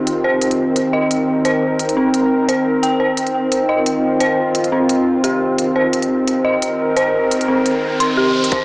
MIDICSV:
0, 0, Header, 1, 5, 480
1, 0, Start_track
1, 0, Tempo, 344828
1, 337, Time_signature, 4, 2, 24, 8
1, 12035, End_track
2, 0, Start_track
2, 0, Title_t, "Synth bell"
2, 0, Program_c, 0, 98
2, 0, Control_c, 0, 64, 127
2, 0, Note_on_c, 0, 60, 69
2, 0, Note_on_c, 0, 67, 69
2, 0, Note_on_c, 0, 72, 87
2, 0, Note_on_c, 0, 75, 73
2, 338, Note_off_c, 0, 72, 0
2, 338, Note_on_c, 0, 72, 76
2, 567, Note_off_c, 0, 72, 0
2, 1297, Note_off_c, 0, 75, 0
2, 1297, Note_on_c, 0, 75, 75
2, 1444, Note_off_c, 0, 75, 0
2, 2017, Note_on_c, 0, 72, 89
2, 2246, Note_off_c, 0, 72, 0
2, 2738, Note_off_c, 0, 60, 0
2, 2738, Note_on_c, 0, 60, 70
2, 2885, Note_off_c, 0, 60, 0
2, 3459, Note_on_c, 0, 72, 69
2, 3677, Note_off_c, 0, 72, 0
2, 3935, Note_on_c, 0, 79, 67
2, 4155, Note_off_c, 0, 79, 0
2, 4174, Note_on_c, 0, 72, 74
2, 4405, Note_off_c, 0, 72, 0
2, 5135, Note_on_c, 0, 75, 74
2, 5283, Note_off_c, 0, 75, 0
2, 5852, Note_on_c, 0, 72, 87
2, 6084, Note_off_c, 0, 72, 0
2, 6572, Note_on_c, 0, 60, 72
2, 6722, Note_off_c, 0, 60, 0
2, 7291, Note_off_c, 0, 67, 0
2, 7291, Note_on_c, 0, 67, 69
2, 7523, Note_off_c, 0, 67, 0
2, 8013, Note_on_c, 0, 72, 76
2, 8244, Note_off_c, 0, 72, 0
2, 8972, Note_on_c, 0, 75, 76
2, 9121, Note_off_c, 0, 75, 0
2, 9695, Note_on_c, 0, 72, 89
2, 9926, Note_off_c, 0, 72, 0
2, 10417, Note_on_c, 0, 60, 71
2, 10564, Note_off_c, 0, 60, 0
2, 11137, Note_on_c, 0, 84, 68
2, 11355, Note_off_c, 0, 84, 0
2, 11376, Note_on_c, 0, 67, 72
2, 11595, Note_off_c, 0, 67, 0
2, 11857, Note_on_c, 0, 72, 76
2, 11872, Control_c, 0, 64, 0
2, 12035, Note_off_c, 0, 72, 0
2, 12035, End_track
3, 0, Start_track
3, 0, Title_t, "Synth drone"
3, 0, Program_c, 1, 95
3, 0, Note_on_c, 1, 51, 80
3, 0, Note_on_c, 1, 60, 73
3, 0, Note_on_c, 1, 65, 88
3, 325, Note_off_c, 1, 65, 0
3, 342, Note_on_c, 1, 70, 86
3, 4168, Note_off_c, 1, 70, 0
3, 4172, Note_on_c, 1, 65, 86
3, 8002, Note_off_c, 1, 65, 0
3, 8017, Note_on_c, 1, 70, 88
3, 11800, Note_off_c, 1, 51, 0
3, 11801, Note_off_c, 1, 60, 0
3, 11845, Note_off_c, 1, 70, 0
3, 12035, End_track
4, 0, Start_track
4, 0, Title_t, "Riser"
4, 0, Program_c, 2, 103
4, 8015, Note_on_c, 2, 60, 71
4, 11856, Note_off_c, 2, 60, 0
4, 12035, End_track
5, 0, Start_track
5, 0, Title_t, "Drums"
5, 97, Note_on_c, 9, 42, 63
5, 236, Note_off_c, 9, 42, 0
5, 578, Note_on_c, 9, 42, 72
5, 711, Note_off_c, 9, 42, 0
5, 711, Note_on_c, 9, 42, 33
5, 851, Note_off_c, 9, 42, 0
5, 1058, Note_on_c, 9, 42, 63
5, 1197, Note_off_c, 9, 42, 0
5, 1542, Note_on_c, 9, 42, 75
5, 1682, Note_off_c, 9, 42, 0
5, 2018, Note_on_c, 9, 42, 60
5, 2157, Note_off_c, 9, 42, 0
5, 2497, Note_on_c, 9, 42, 70
5, 2630, Note_off_c, 9, 42, 0
5, 2630, Note_on_c, 9, 42, 33
5, 2770, Note_off_c, 9, 42, 0
5, 2977, Note_on_c, 9, 42, 60
5, 3116, Note_off_c, 9, 42, 0
5, 3461, Note_on_c, 9, 42, 72
5, 3601, Note_off_c, 9, 42, 0
5, 3941, Note_on_c, 9, 42, 60
5, 4080, Note_off_c, 9, 42, 0
5, 4416, Note_on_c, 9, 42, 69
5, 4546, Note_off_c, 9, 42, 0
5, 4546, Note_on_c, 9, 42, 31
5, 4686, Note_off_c, 9, 42, 0
5, 4897, Note_on_c, 9, 42, 58
5, 5036, Note_off_c, 9, 42, 0
5, 5376, Note_on_c, 9, 42, 69
5, 5515, Note_off_c, 9, 42, 0
5, 5853, Note_on_c, 9, 42, 58
5, 5992, Note_off_c, 9, 42, 0
5, 6331, Note_on_c, 9, 42, 71
5, 6461, Note_off_c, 9, 42, 0
5, 6461, Note_on_c, 9, 42, 31
5, 6600, Note_off_c, 9, 42, 0
5, 6811, Note_on_c, 9, 42, 59
5, 6951, Note_off_c, 9, 42, 0
5, 7293, Note_on_c, 9, 42, 69
5, 7432, Note_off_c, 9, 42, 0
5, 7774, Note_on_c, 9, 42, 57
5, 7913, Note_off_c, 9, 42, 0
5, 8257, Note_on_c, 9, 42, 72
5, 8386, Note_off_c, 9, 42, 0
5, 8386, Note_on_c, 9, 42, 33
5, 8525, Note_off_c, 9, 42, 0
5, 8735, Note_on_c, 9, 42, 60
5, 8874, Note_off_c, 9, 42, 0
5, 9218, Note_on_c, 9, 42, 73
5, 9357, Note_off_c, 9, 42, 0
5, 9696, Note_on_c, 9, 42, 57
5, 9835, Note_off_c, 9, 42, 0
5, 10181, Note_on_c, 9, 42, 75
5, 10314, Note_off_c, 9, 42, 0
5, 10314, Note_on_c, 9, 42, 35
5, 10453, Note_off_c, 9, 42, 0
5, 10659, Note_on_c, 9, 42, 64
5, 10798, Note_off_c, 9, 42, 0
5, 11139, Note_on_c, 9, 42, 73
5, 11278, Note_off_c, 9, 42, 0
5, 11748, Note_on_c, 9, 42, 62
5, 11856, Note_off_c, 9, 42, 0
5, 11856, Note_on_c, 9, 42, 76
5, 11858, Note_on_c, 9, 36, 109
5, 11996, Note_off_c, 9, 42, 0
5, 11997, Note_off_c, 9, 36, 0
5, 12035, End_track
0, 0, End_of_file